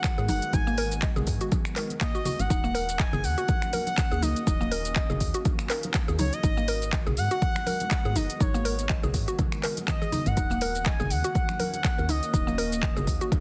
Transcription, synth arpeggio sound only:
0.18 G#4
0.29 D#4
0.53 D#4
0.67 A#3
0.78 A#4
1.03 D#5
1.16 G#4
1.41 F#4
1.76 A#4
2.01 A#3
2.15 F#4
2.26 F#4
2.50 D#4
2.64 A#3
2.75 A#4
2.99 D#5
3.13 G#4
3.38 F#4
3.73 A#4
4.12 G#4
4.22 D#4
4.47 D#4
4.61 A#3
4.71 A#4
4.96 D#5
5.10 G#4
5.34 F#4
5.70 A#4
6.08 G#4
6.19 D#4
6.44 D#4
6.57 A#3
6.68 A#4
6.93 D#5
7.07 G#4
7.31 F#4
7.67 A#4
8.05 G#4
8.16 D#4
8.41 D#4
8.54 A#3
8.65 A#4
8.89 D#5
9.03 G#4
9.28 F#4
9.63 A#4
10.02 G#4
10.12 D#4
10.37 D#4
10.51 A#3
10.62 A#4
10.86 D#5
11.00 G#4
11.24 F#4
11.60 A#4
11.98 A#4
12.09 D#4
12.34 D#4
12.47 A#3
12.58 A#4
12.83 D#5
12.97 G#4
13.21 F#4

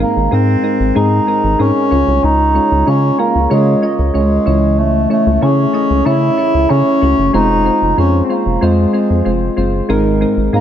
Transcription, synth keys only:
Already playing: G#2
0.00 G#3 C4 D#4 A#4
0.31 G#3 C4 D#4 A#4
0.63 G#3 C4 D#4 A#4
0.95 G#3 C4 D#4 G#4
1.27 G#3 C4 D#4 A#4
1.59 G#3 C4 D#4 A#4
1.91 C#3 G#3 C#4 F4 C#5
2.55 G#3 C#4 F4 C#5
2.87 G#3 C#4 F4 C#5
3.18 G#3 C#4 F4 A#4
3.50 G#3 C#4 F4 C#5
3.82 G#3 C#4 F4 D#5
4.14 G#3 C#4 F4 C#5
4.46 C#3 E3 C#4 E4 C#5
5.10 A3 C#4 E4 C#5
5.41 A3 C#4 E4 G#4
5.73 A3 C#4 E4 D#5
6.05 A3 C#4 E4 C#5
6.37 A3 C#4 E4 C#5
6.69 A3 C#4 E4 C#5
7.01 A3 C#4 E4 F#4
7.33 G#3 C4 F4 C5
7.65 G#3 C4 F4 C5
7.97 G#3 C4 F4 C5
8.29 G#3 C4 F4 C5
8.61 G#3 C4 F4 C5
8.93 G#3 C4 F4 C5
9.25 G#3 C4 F4 C5
9.56 G#3 C4 F4 C5
9.89 G#2 G#3 C4 D#4 A#4
10.21 G#3 C4 D#4 A#4
10.53 G#3 C4 D#4 A#4

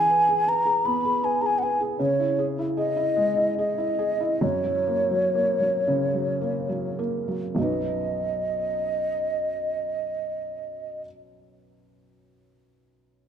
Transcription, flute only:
Already playing: G#5
0.48 A#5
0.85 B5
1.24 G#5
1.41 A#5
1.46 G#5
1.58 F#5
1.63 G#5
1.99 C#5
2.78 D#5
3.59 D#5
4.43 C#5
7.57 D#5

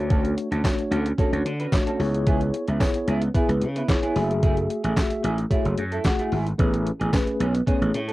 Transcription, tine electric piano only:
Already playing: A3 D4 F#4 C#5
0.64 A3 D4 F#4 C#5
1.18 A3 D4 F#4 C#5
1.72 A3 D4 F#4 C#5
1.99 B3 E4 G#4 C#5
2.80 B3 E4 G#4 C#5
3.34 B3 E4 G#4 B4
3.89 B3 E4 G#4 C#5
4.16 A3 F#4 G#4 E5
4.97 A3 F#4 G#4 E5
5.51 A3 F#4 G#4 C#5
6.05 A3 F#4 G#4 F#5
6.58 A3 C#4 G#4 B4
7.13 A3 C#4 G#4 B4
7.67 A3 C#4 G#4 C#5

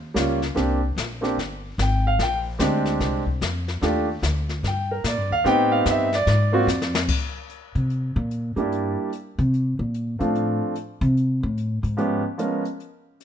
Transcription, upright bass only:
Already playing: D#2
0.15 C#2
0.56 C2
0.96 A#1
1.38 G1
1.78 G#1
2.19 A#1
2.60 D2
3.00 C2
3.41 F2
3.82 D#2
4.22 D2
4.63 G2
5.04 A#2
5.17 G2
5.31 D#2
5.45 A2
5.86 G2
6.27 G#2
6.67 F2
7.75 C3
8.16 A#2
8.56 G2
9.39 C3
9.79 A#2
10.20 A2
11.01 C3
11.43 A2
11.83 G#2

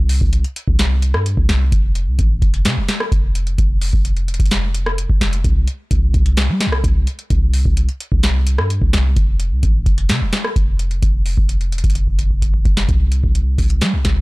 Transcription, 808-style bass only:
Already playing: C2
0.21 C2
0.68 C2
1.14 G2
1.37 C2
1.49 C2
1.72 F1
2.07 C2
2.19 A1
2.42 F1
2.65 C3
2.77 F1
3.12 F1
3.58 F1
3.93 F1
4.28 E1
4.40 F1
5.10 F1
5.21 F1
5.44 C2
5.91 C2
6.14 C2
6.49 G3
6.67 C2
6.84 C2
7.30 C2
7.65 C2
8.12 C2
8.58 G2
8.82 C2
8.93 C2
9.17 F1
9.51 C2
9.63 A1
9.86 F1
10.10 C3
10.21 F1
10.56 F1
11.03 F1
11.38 F1
11.72 E1
11.84 F1
12.65 F1
12.89 C2
13.24 C2
13.58 C2
13.82 G3
13.93 C2
14.05 C2

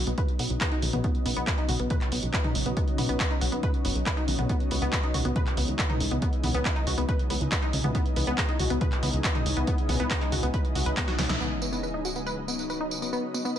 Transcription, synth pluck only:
0.07 B3
0.18 B4
0.39 B3
0.61 B4
0.72 D#4
0.93 B3
1.04 B3
1.26 B3
1.37 B3
1.47 B4
1.58 D#4
1.69 F#4
1.80 B3
1.91 B4
2.12 B3
2.34 B4
2.44 D#4
2.66 B3
2.77 B3
2.98 B3
3.09 B3
3.20 B4
3.31 D#4
3.41 F#4
3.52 B3
3.63 B4
3.85 B3
4.06 B4
4.17 D#4
4.39 B3
4.50 B3
4.71 B3
4.82 B3
4.93 B4
5.04 D#4
5.14 F#4
5.25 B3
5.36 B4
5.57 B3
5.79 B4
5.90 D#4
6.12 B3
6.22 B3
6.44 B3
6.55 B3
6.65 B4
6.76 D#4
6.87 F#4
6.98 B3
7.09 B4
7.30 B3
7.52 B4
7.63 D#4
7.84 B3
7.95 B3
8.16 B3
8.27 B3
8.38 B4
8.49 D#4
8.60 F#4
8.70 B3
8.81 B4
9.03 B3
9.24 B4
9.35 D#4
9.57 B3
9.68 B3
9.89 B3
10.00 B3
10.10 B4
10.21 D#4
10.32 F#4
10.43 B3
10.54 B4
10.75 F#4
10.86 B4
10.97 B3
11.08 F#4
11.19 B3
11.29 E4
11.40 B3
11.62 B3
11.72 B3
11.83 B4
11.94 D#4
12.05 F#4
12.16 B3
12.26 B4
12.48 B3
12.70 B4
12.81 D#4
13.02 B3
13.13 B3
13.34 B3
13.45 B3
13.56 B4

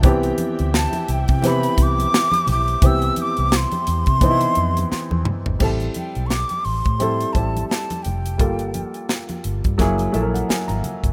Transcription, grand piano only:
0.02 E3 B3 C4 G4
1.42 E3 B3 C4 G4
2.82 E3 B3 C4 G4
4.21 E3 B3 C4 D#4
4.30 E4
5.59 G3 C4 E4 A4
6.99 G3 C4 E4 A4
7.34 G3 C4 E4 G4
8.38 G3 A#3 F4 A4
9.78 F#3 A#3 E4 G#4
10.12 F#3 A#3 E4 A4 E5
10.22 A#4
10.34 F#5
10.48 G#5
10.68 A#5

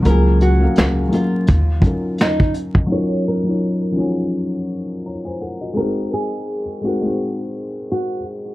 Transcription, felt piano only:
0.02 F#3 A#3 C#4
0.08 F4 G#4
0.58 F#3 A#3 C#4
0.63 A#4 F5
1.08 F#3 A#3 C#4
1.13 F4 A#4
1.80 F#3 C#4 D#4
1.85 F4 A#4
2.87 F#3 C#4 D#4
2.92 F4 A#4
3.43 F#3 C#4 D#4
3.48 F4 C#5
3.92 F3 C#4 D#4
3.97 F#3 F4 C#5
5.06 C#5 A#5
5.25 C5 G#5
5.41 A#4 F#5
5.61 F#4 D#5
5.74 G#3 C4 D#4
5.79 F#4 A#4
6.81 G#3 C4 D#4
6.87 F#4 A#4
7.02 G#3 C4 D#4
7.07 F#4 C5

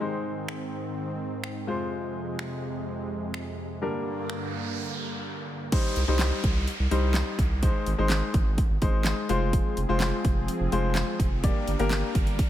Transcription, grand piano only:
0.01 G#3 D#4 C5
1.67 G#3 F4 C5
3.81 G3 D4 A#4
5.72 G3 D#4 C5
6.08 G3 D#4 C5
6.91 G3 D#4 C5
7.62 G#3 D#4 C5
7.98 G#3 D#4 C5
8.82 G#3 D#4 C5
9.29 G#3 F4 C5
9.89 G#3 F4 C5
10.72 G#3 F4 C5
11.43 A#3 G4 D5
11.79 A#3 G4 A#4

